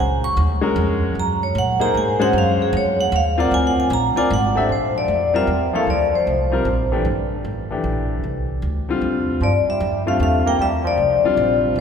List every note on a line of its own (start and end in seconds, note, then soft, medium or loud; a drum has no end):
0.00 0.36 C#2 medium
0.00 0.23 G#5 medium
0.24 0.32 C#6 loud
0.37 0.75 D#2 medium
0.61 1.12 G#3 medium
0.61 1.13 C#4 medium
0.61 1.13 F#4 medium
0.61 1.13 A#4 medium
0.76 1.14 F2 medium
1.15 1.53 F#2 medium
1.20 1.42 A#5 medium
1.43 1.56 C#5 medium
1.55 1.93 A#2 medium
1.55 1.81 F#5 loud
1.80 2.17 A#3 medium
1.80 2.17 D#4 medium
1.80 2.17 G#4 medium
1.80 2.17 C5 medium
1.80 1.94 A#5 loud
1.94 2.32 G#2 medium
1.94 2.20 G#5 medium
2.20 2.70 G#3 medium
2.20 2.70 C#4 medium
2.20 2.71 F#4 medium
2.20 2.71 C5 medium
2.20 2.34 F#5 loud
2.33 2.71 F#2 medium
2.38 2.60 F5 medium
2.62 2.74 G#4 medium
2.73 3.11 F2 loud
2.77 2.99 C#5 medium
3.01 3.13 F#5 loud
3.12 3.50 D#2 loud
3.12 3.38 F5 loud
3.38 3.88 C4 medium
3.38 3.88 F4 medium
3.38 3.89 A#4 medium
3.38 3.89 D5 medium
3.38 3.53 F#5 medium
3.51 3.89 D2 medium
3.51 3.66 G#5 loud
3.67 3.79 F#5 medium
3.80 3.91 G#5 medium
3.90 4.14 A#1 loud
3.90 4.17 A#5 loud
4.16 4.29 C4 medium
4.16 4.29 F4 medium
4.16 4.29 A#4 medium
4.16 4.30 D5 medium
4.16 4.30 G#5 loud
4.16 muted upright bass stroke soft
4.30 4.68 G#1 loud
4.30 4.62 F#5 loud
4.55 4.68 A3 medium
4.55 4.68 D4 medium
4.55 4.69 G4 medium
4.55 4.69 C5 medium
4.55 4.69 E5 medium
4.69 5.07 A#1 medium
4.69 4.93 F3 medium
4.69 4.94 C5 medium
4.95 5.31 F3 medium
4.95 5.37 D5 medium
5.08 5.47 F2 medium
5.34 5.47 G3 medium
5.34 5.71 G3 medium
5.34 5.47 C4 medium
5.34 5.47 F4 medium
5.34 5.47 A#4 medium
5.34 5.75 E5 medium
5.47 5.86 E2 medium
5.73 5.86 F3 medium
5.73 5.81 A3 medium
5.73 5.86 A#3 medium
5.73 5.87 E4 medium
5.73 5.87 A4 medium
5.73 5.82 F5 medium
5.87 6.25 D2 medium
5.87 6.11 F3 medium
5.87 6.15 D5 medium
6.14 6.88 F3 medium
6.14 6.89 C5 medium
6.27 6.64 C2 medium
6.52 6.64 G3 medium
6.52 6.65 C4 medium
6.52 6.65 F4 medium
6.52 6.65 A#4 medium
6.65 7.04 A#1 medium
6.92 7.04 E3 medium
6.92 7.05 A3 medium
6.92 7.05 D4 medium
6.92 7.05 G4 medium
7.05 7.43 G1 medium
7.45 7.83 A1 medium
7.71 8.21 E3 medium
7.71 8.21 A3 soft
7.71 8.21 D4 medium
7.71 8.22 G4 medium
7.84 8.22 A#1 medium
8.24 8.62 C2 medium
8.62 9.01 D2 medium
8.88 9.39 D3 medium
8.88 9.39 G3 medium
8.88 9.39 C4 medium
8.88 9.40 F4 medium
9.02 9.40 E2 medium
9.41 9.64 G2 medium
9.41 9.53 F3 medium
9.41 9.54 D5 medium
9.66 10.03 G3 medium
9.66 10.05 E5 medium
9.66 muted upright bass stroke soft
9.80 10.19 F2 medium
10.06 10.56 D3 medium
10.06 10.57 G3 medium
10.06 10.19 A3 medium
10.06 10.57 C4 medium
10.06 10.57 F4 medium
10.06 10.21 F5 medium
10.20 10.58 E2 medium
10.20 10.44 A3 medium
10.20 10.45 F5 medium
10.46 10.59 A#3 medium
10.46 10.61 G5 medium
10.59 10.97 D2 medium
10.59 10.71 G3 medium
10.59 10.72 E5 medium
10.84 11.59 F3 medium
10.84 11.60 D5 medium
10.98 11.21 C2 medium
11.23 11.74 D3 medium
11.23 11.75 G3 medium
11.23 11.75 C4 medium
11.23 11.75 F4 medium
11.23 muted upright bass stroke soft
11.37 11.75 A#1 medium
11.76 11.80 G1 medium
11.76 11.80 E3 medium